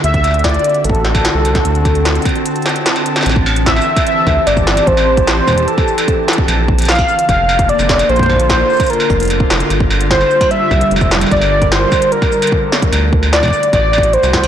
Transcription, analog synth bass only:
\new Staff \with { instrumentName = "Analog synth bass" } { \clef bass \time 4/4 \key a \phrygian \tempo 4 = 149 d,4~ d,16 r8. a,,4 r16 c,8 r16 | d,4~ d,16 r2 r8. | a,,4~ a,,16 r4 r16 d,16 r16 g,,8. r16 | a,,4~ a,,16 r2 r8. |
bes,,4~ bes,,16 r8. f,,4 r16 f,,8 r16 | bes,,4~ bes,,16 r4 r16 f,,8. r16 f,,16 r16 | g,,4~ g,,16 r4 r16 c,16 r16 f,,8. r16 | g,,4~ g,,16 r2 r8. |
d,4~ d,16 r8. a,,4 r16 c,8 r16 | }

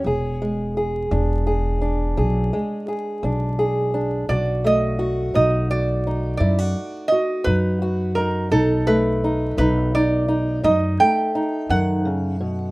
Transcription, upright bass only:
\new Staff \with { instrumentName = "Upright bass" } { \clef bass \time 12/8 \key b \dorian \tempo 4. = 57 e,,4. e,,4. b,,8 r4 b,,4. | b,,4. b,,4. fis,8 r4 fis,4. | b,,4. b,,4. fis,8 r4 fis,4. | }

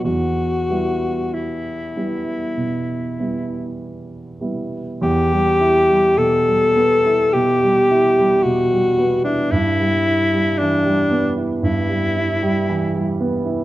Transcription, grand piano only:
\new Staff \with { instrumentName = "Grand piano" } { \clef bass \time 4/4 \key e \minor \tempo 4 = 52 e,8 <g b e'>4 <g b e'>8 b,8 <g b e'>4 <g b e'>8 | e,16 g16 e'16 g16 b,16 g16 b16 e'16 b,16 g16 e'16 g16 b,16 g16 b16 e'16 | g,16 g16 e'16 g16 e16 g16 b16 e'16 g,16 g16 e'16 g16 e16 g16 b16 e'16 | }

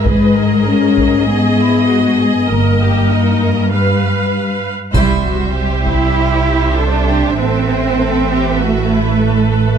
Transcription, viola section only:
\new Staff \with { instrumentName = "Viola section" } { \time 4/4 \key gis \minor \tempo 4 = 98 << { dis''1~ | dis''2 f''4. r8 | \key c \lydian c''1 | b'1 | } \\ { gis'1 | ais'2 b'4. r8 | g1 | a'1 | } >> }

